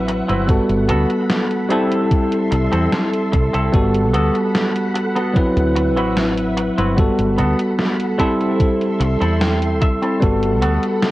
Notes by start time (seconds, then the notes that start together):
Already playing: A1 F#3 C4 E4 B4 E5 F#5
0.08 muted clean electric guitar stroke, closed hi-hat
0.28 G1 C4 E4 F#4 B4, closed hi-hat
0.47 G3 B3 F#4 A4 B5, kick, closed hi-hat
0.69 G1, closed hi-hat
0.89 D2 B3 F#4 A4, closed hi-hat
1.10 closed hi-hat
1.30 snare, closed hi-hat
1.51 closed hi-hat
1.69 G3 C4 E4 A4 E5 C6, closed hi-hat
1.91 closed hi-hat
2.11 kick, closed hi-hat
2.32 closed hi-hat
2.51 C2, muted clean electric guitar stroke, closed hi-hat
2.72 E2 C4 E4 A4, closed hi-hat
2.92 snare, closed hi-hat
3.13 closed hi-hat
3.32 C2, muted clean electric guitar stroke, kick, closed hi-hat
3.53 C2 C4 E4 A4, closed hi-hat
3.72 G1 G3 B3 F#4 A4 F#5 B5, kick, closed hi-hat
3.94 closed hi-hat
4.13 D2 B3 F#4 A4, closed hi-hat
4.35 closed hi-hat
4.55 snare, closed hi-hat
4.75 closed hi-hat
4.94 muted clean electric guitar stroke, closed hi-hat
5.15 B3 F#4 A4, closed hi-hat
5.33 F#3 C4 E4 B4 E5, muted fretless electric bass stroke, kick, closed hi-hat
5.56 D2, closed hi-hat
5.75 muted clean electric guitar stroke, closed hi-hat
5.97 A1 C4 E4 F#4 B4, closed hi-hat
6.17 snare, closed hi-hat
6.38 closed hi-hat
6.57 muted clean electric guitar stroke, closed hi-hat
6.78 G1 C4 E4 F#4 B4, closed hi-hat
6.96 G3 B3 F#4 A4 F#5 B5, kick, closed hi-hat
7.19 G1, closed hi-hat
7.38 D2 B3 F#4 A4, closed hi-hat
7.59 closed hi-hat
7.79 snare, closed hi-hat
8.00 closed hi-hat
8.18 G3 C4 E4 A4 E5 C6, kick, closed hi-hat
8.41 closed hi-hat
8.60 kick, closed hi-hat
8.81 closed hi-hat
9.00 C2, muted clean electric guitar stroke, closed hi-hat
9.20 E2 C4 E4 A4, closed hi-hat
9.41 G5, snare, closed hi-hat
9.62 closed hi-hat
9.81 C2 E5, muted clean electric guitar stroke, kick, closed hi-hat
10.02 C4 E4 A4, closed hi-hat
10.20 G1 G3 B3 F#4 A4 F#5 B5, kick, closed hi-hat
10.43 closed hi-hat
10.62 D2 B3 F#4 A4, closed hi-hat
10.83 closed hi-hat
11.03 snare, closed hi-hat